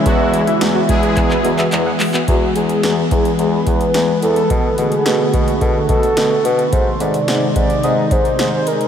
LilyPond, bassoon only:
\new Staff \with { instrumentName = "Bassoon" } { \clef bass \time 4/4 \key b \dorian \tempo 4 = 108 e,4 e,8 e,8 e,8 e,8 e,8 r8 | e,8 e,8 e,8 e,8 e,8 e,8 e,8 e,8 | b,8 b,8 b,8 b,8 b,8 b,8 b,8 b,8 | gis,8 gis,8 gis,8 gis,8 gis,8 gis,8 gis,8 r8 | }